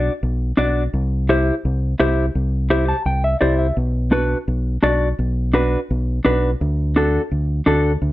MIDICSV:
0, 0, Header, 1, 3, 480
1, 0, Start_track
1, 0, Tempo, 354191
1, 1270, Time_signature, 4, 2, 24, 8
1, 11011, End_track
2, 0, Start_track
2, 0, Title_t, "Clean electric guitar"
2, 0, Program_c, 0, 27
2, 0, Note_on_c, 0, 62, 82
2, 0, Note_on_c, 0, 66, 76
2, 0, Note_on_c, 0, 74, 92
2, 157, Note_off_c, 0, 62, 0
2, 161, Note_off_c, 0, 66, 0
2, 164, Note_off_c, 0, 74, 0
2, 776, Note_on_c, 0, 62, 90
2, 782, Note_on_c, 0, 66, 77
2, 791, Note_on_c, 0, 74, 90
2, 1119, Note_off_c, 0, 62, 0
2, 1123, Note_off_c, 0, 66, 0
2, 1124, Note_off_c, 0, 74, 0
2, 1752, Note_on_c, 0, 64, 86
2, 1753, Note_on_c, 0, 67, 76
2, 1761, Note_on_c, 0, 72, 93
2, 2086, Note_off_c, 0, 64, 0
2, 2088, Note_off_c, 0, 67, 0
2, 2091, Note_off_c, 0, 72, 0
2, 2704, Note_on_c, 0, 64, 85
2, 2709, Note_on_c, 0, 67, 77
2, 2714, Note_on_c, 0, 72, 89
2, 3044, Note_off_c, 0, 64, 0
2, 3046, Note_off_c, 0, 67, 0
2, 3048, Note_off_c, 0, 72, 0
2, 3664, Note_on_c, 0, 64, 80
2, 3665, Note_on_c, 0, 67, 73
2, 3670, Note_on_c, 0, 72, 87
2, 3904, Note_off_c, 0, 64, 0
2, 3909, Note_on_c, 0, 81, 69
2, 4004, Note_off_c, 0, 67, 0
2, 4007, Note_off_c, 0, 72, 0
2, 4133, Note_off_c, 0, 81, 0
2, 4149, Note_on_c, 0, 79, 64
2, 4374, Note_off_c, 0, 79, 0
2, 4392, Note_on_c, 0, 76, 65
2, 4611, Note_off_c, 0, 76, 0
2, 4616, Note_on_c, 0, 74, 72
2, 4620, Note_on_c, 0, 64, 81
2, 4625, Note_on_c, 0, 67, 79
2, 4627, Note_on_c, 0, 72, 88
2, 4847, Note_off_c, 0, 74, 0
2, 4860, Note_on_c, 0, 76, 63
2, 4961, Note_off_c, 0, 64, 0
2, 4964, Note_off_c, 0, 72, 0
2, 4965, Note_off_c, 0, 67, 0
2, 5089, Note_off_c, 0, 76, 0
2, 5579, Note_on_c, 0, 62, 83
2, 5585, Note_on_c, 0, 66, 74
2, 5593, Note_on_c, 0, 71, 95
2, 5922, Note_off_c, 0, 62, 0
2, 5925, Note_off_c, 0, 66, 0
2, 5927, Note_off_c, 0, 71, 0
2, 6539, Note_on_c, 0, 62, 80
2, 6547, Note_on_c, 0, 66, 81
2, 6552, Note_on_c, 0, 74, 96
2, 6882, Note_off_c, 0, 62, 0
2, 6886, Note_off_c, 0, 66, 0
2, 6887, Note_off_c, 0, 74, 0
2, 7501, Note_on_c, 0, 62, 79
2, 7510, Note_on_c, 0, 66, 80
2, 7518, Note_on_c, 0, 71, 89
2, 7843, Note_off_c, 0, 62, 0
2, 7848, Note_off_c, 0, 66, 0
2, 7850, Note_off_c, 0, 71, 0
2, 8465, Note_on_c, 0, 62, 89
2, 8474, Note_on_c, 0, 66, 76
2, 8479, Note_on_c, 0, 71, 95
2, 8804, Note_off_c, 0, 62, 0
2, 8809, Note_off_c, 0, 66, 0
2, 8810, Note_off_c, 0, 71, 0
2, 9435, Note_on_c, 0, 62, 88
2, 9441, Note_on_c, 0, 66, 79
2, 9452, Note_on_c, 0, 69, 90
2, 9769, Note_off_c, 0, 62, 0
2, 9772, Note_off_c, 0, 66, 0
2, 9777, Note_off_c, 0, 69, 0
2, 10384, Note_on_c, 0, 62, 84
2, 10392, Note_on_c, 0, 66, 82
2, 10399, Note_on_c, 0, 69, 89
2, 10723, Note_off_c, 0, 62, 0
2, 10728, Note_off_c, 0, 66, 0
2, 10729, Note_off_c, 0, 69, 0
2, 11011, End_track
3, 0, Start_track
3, 0, Title_t, "Fingered electric bass"
3, 0, Program_c, 1, 33
3, 308, Note_on_c, 1, 35, 95
3, 693, Note_off_c, 1, 35, 0
3, 788, Note_on_c, 1, 35, 88
3, 1173, Note_off_c, 1, 35, 0
3, 1266, Note_on_c, 1, 36, 106
3, 2036, Note_off_c, 1, 36, 0
3, 2234, Note_on_c, 1, 36, 90
3, 2617, Note_off_c, 1, 36, 0
3, 2709, Note_on_c, 1, 36, 86
3, 3094, Note_off_c, 1, 36, 0
3, 3187, Note_on_c, 1, 36, 102
3, 3957, Note_off_c, 1, 36, 0
3, 4140, Note_on_c, 1, 36, 88
3, 4529, Note_off_c, 1, 36, 0
3, 4632, Note_on_c, 1, 36, 88
3, 5016, Note_off_c, 1, 36, 0
3, 5105, Note_on_c, 1, 35, 102
3, 5876, Note_off_c, 1, 35, 0
3, 6066, Note_on_c, 1, 35, 101
3, 6453, Note_off_c, 1, 35, 0
3, 6545, Note_on_c, 1, 35, 86
3, 6932, Note_off_c, 1, 35, 0
3, 7028, Note_on_c, 1, 35, 105
3, 7798, Note_off_c, 1, 35, 0
3, 8002, Note_on_c, 1, 35, 99
3, 8382, Note_off_c, 1, 35, 0
3, 8477, Note_on_c, 1, 35, 89
3, 8859, Note_off_c, 1, 35, 0
3, 8958, Note_on_c, 1, 38, 106
3, 9723, Note_off_c, 1, 38, 0
3, 9912, Note_on_c, 1, 38, 94
3, 10296, Note_off_c, 1, 38, 0
3, 10390, Note_on_c, 1, 38, 89
3, 10774, Note_off_c, 1, 38, 0
3, 10863, Note_on_c, 1, 38, 96
3, 11011, Note_off_c, 1, 38, 0
3, 11011, End_track
0, 0, End_of_file